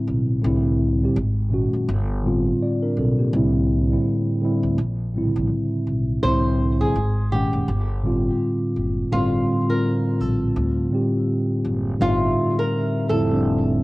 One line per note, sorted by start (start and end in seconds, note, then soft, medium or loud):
0.00 0.33 A2 medium
0.00 0.33 D3 medium
0.00 0.34 G3 medium
0.00 0.34 C4 medium
0.00 0.35 E4 medium
0.07 0.38 B1 medium
0.42 1.05 C2 loud
0.42 0.93 A2 loud
0.42 0.93 D3 medium
0.42 0.94 G3 medium
0.42 0.94 C4 medium
0.46 0.95 E4 loud
1.00 1.15 A2 medium
1.00 1.16 D3 medium
1.00 1.17 G3 medium
1.00 1.17 C4 medium
1.05 1.18 G4 medium
1.16 1.65 G#1 loud
1.49 1.87 A#2 medium
1.49 1.88 D#3 medium
1.49 1.88 G#3 medium
1.49 1.88 C#4 medium
1.54 1.89 F#4 medium
1.73 1.86 F#1 medium
1.89 2.50 G1 loud
2.22 3.22 A2 medium
2.22 3.22 D3 medium
2.22 3.23 G3 medium
2.22 2.61 C4 medium
2.27 2.62 F4 medium
2.62 2.82 F4 medium
2.62 2.82 D5 medium
2.82 2.97 D4 medium
2.82 2.96 A#4 medium
2.97 3.27 B1 medium
2.97 3.18 C4 medium
2.97 3.18 A4 medium
3.19 3.53 A#3 medium
3.19 3.53 G4 medium
3.32 3.94 C2 loud
3.32 3.82 A2 medium
3.32 3.83 D3 medium
3.32 3.84 G3 medium
3.32 3.84 C4 medium
3.36 3.85 E4 loud
3.89 4.35 A2 medium
3.89 4.36 D3 medium
3.89 4.37 G3 medium
3.89 4.37 C4 medium
3.93 4.38 E4 medium
4.40 4.77 A2 medium
4.40 4.77 D3 medium
4.40 4.78 G3 medium
4.40 4.79 C4 medium
4.45 4.79 E4 medium
4.63 4.75 D2 medium
4.78 5.26 A#1 loud
5.14 6.12 A2 medium
5.14 5.22 C#3 medium
5.14 6.13 G3 medium
5.14 6.13 C4 medium
5.18 6.16 D3 medium
5.18 6.14 E4 medium
5.36 5.48 A#1 medium
5.87 6.17 B1 medium
6.23 6.84 C2 loud
6.23 6.72 A2 medium
6.23 6.73 D3 medium
6.23 6.73 G3 medium
6.23 6.74 C4 loud
6.23 6.76 C5 loud
6.27 6.75 E4 loud
6.79 6.94 A2 medium
6.79 6.95 D3 medium
6.79 6.95 G3 medium
6.79 6.96 C4 medium
6.79 7.28 G#4 medium
6.84 6.96 E4 medium
6.96 7.44 G#1 loud
7.31 7.67 A#2 medium
7.31 7.67 D#3 medium
7.31 7.68 G#3 medium
7.31 7.69 C#4 medium
7.31 7.85 G4 medium
7.36 7.69 F#5 medium
7.53 7.65 F#1 medium
7.68 8.29 G1 loud
8.03 9.01 A2 medium
8.03 9.01 D3 medium
8.03 9.02 G3 medium
8.03 9.03 C4 medium
8.07 9.03 F4 medium
8.76 9.06 F#1 medium
9.11 9.42 G1 loud
9.11 9.61 A2 medium
9.11 9.62 D3 medium
9.11 9.62 G3 loud
9.11 9.63 C4 medium
9.11 9.66 F4 loud
9.11 9.63 F4 loud
9.67 10.79 A2 medium
9.67 10.80 D3 medium
9.67 10.80 G3 medium
9.67 10.81 C4 medium
9.67 10.21 A#4 medium
9.72 10.81 F4 medium
10.20 10.51 A#1 medium
10.20 10.74 A4 medium
10.56 10.86 D2 loud
10.90 11.89 A2 medium
10.90 11.90 D3 medium
10.90 11.90 G3 medium
10.90 11.91 C4 medium
10.95 11.91 G4 medium
11.64 11.95 F#1 medium
11.98 12.31 G1 loud
11.98 12.97 A2 medium
11.98 12.98 D3 medium
11.98 12.98 G3 loud
11.98 12.99 C4 medium
11.98 12.55 F4 loud
12.02 12.09 D#4 medium
12.09 13.03 E5 loud
12.59 13.06 A#4 medium
13.09 13.83 F1 loud
13.09 13.27 A2 medium
13.09 13.28 D3 medium
13.09 13.29 G3 medium
13.09 13.30 C4 medium
13.09 13.63 A4 medium
13.14 13.30 E4 loud
13.29 13.83 A2 medium
13.29 13.83 D3 medium
13.29 13.83 G3 medium
13.29 13.83 C4 medium
13.33 13.83 D4 medium